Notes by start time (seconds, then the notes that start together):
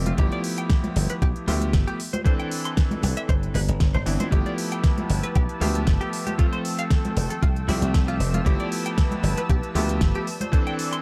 Already playing: F1 F3 A3 C4 G4 E5
0.06 F4, closed hi-hat, high conga
0.17 G1 F3 A3 B3 E4 G4, kick, closed hi-hat
0.32 D5, closed hi-hat
0.44 open hi-hat
0.58 G5, closed hi-hat
0.70 kick, snare, closed hi-hat
0.84 closed hi-hat, high conga
0.96 G1, open hi-hat, low conga
1.10 B4, closed hi-hat
1.22 B1 G4, kick, closed hi-hat
1.36 closed hi-hat
1.47 D2 F3 A3 B3 F4 G4 E5, open hi-hat, high conga, low conga
1.62 closed hi-hat
1.73 G1, kick, snare, closed hi-hat
1.87 G4, closed hi-hat
2.00 open hi-hat
2.13 C5, closed hi-hat, high conga
2.24 E3 C4 D4 A4 C5, kick, closed hi-hat
2.40 G5, closed hi-hat
2.51 open hi-hat
2.65 C6, closed hi-hat
2.77 kick, snare, closed hi-hat
2.91 closed hi-hat, high conga
3.03 C2, open hi-hat, low conga
3.17 E5, closed hi-hat
3.29 G1 C5, kick, closed hi-hat
3.43 closed hi-hat
3.54 G1 B4, open hi-hat, high conga, low conga
3.68 G1, closed hi-hat
3.80 G1, kick, snare, closed hi-hat
3.94 G1 C5, closed hi-hat
4.06 G1 E3 B3 C4 D4 E4, open hi-hat
4.20 C5, closed hi-hat, high conga
4.31 G1 F3 A3 B3 E4 G4 B4 A5 E6, kick, closed hi-hat
4.46 D5, closed hi-hat
4.58 open hi-hat
4.72 G5, closed hi-hat
4.84 kick, snare, closed hi-hat
4.98 closed hi-hat, high conga
5.10 G1, open hi-hat, low conga
5.23 B4, closed hi-hat
5.35 B1 G4, kick, closed hi-hat
5.49 closed hi-hat
5.60 D2 F3 A3 B3 F4 G4 E5, open hi-hat, high conga, low conga
5.75 closed hi-hat
5.87 G1, kick, snare, closed hi-hat
6.01 G4, closed hi-hat
6.13 open hi-hat
6.27 G4, closed hi-hat, high conga
6.38 F3 A3 C4 F4 A4 G5, kick, closed hi-hat
6.53 C5, closed hi-hat
6.65 open hi-hat
6.79 F5, closed hi-hat
6.90 kick, snare, closed hi-hat
7.05 closed hi-hat, high conga
7.17 F1, open hi-hat, low conga
7.30 A4, closed hi-hat
7.42 C2 F4, kick, closed hi-hat
7.56 closed hi-hat
7.68 C2 F3 A3 C4 E4 G4 E5, open hi-hat, high conga, low conga
7.82 C2, closed hi-hat
7.94 kick, snare, closed hi-hat
8.08 F4, closed hi-hat
8.20 F1, open hi-hat
8.34 F4, closed hi-hat, high conga
8.45 G1 F3 A3 B3 E4 G4 B4 A5, kick, closed hi-hat
8.60 D5, closed hi-hat
8.72 open hi-hat
8.86 G5, closed hi-hat
8.98 kick, snare, closed hi-hat
9.11 closed hi-hat, high conga
9.23 G1, open hi-hat, low conga
9.38 B4, closed hi-hat
9.50 B1 G4, kick, closed hi-hat
9.63 closed hi-hat
9.75 D2 F3 A3 B3 F4 G4 E5, open hi-hat, high conga, low conga
9.89 closed hi-hat
10.01 G1, kick, snare, closed hi-hat
10.15 G4, closed hi-hat
10.27 D5, open hi-hat
10.41 C5, closed hi-hat, high conga
10.52 E3 C4 D4 A4 C5, kick, closed hi-hat
10.67 G5, closed hi-hat
10.79 open hi-hat
10.93 C6, closed hi-hat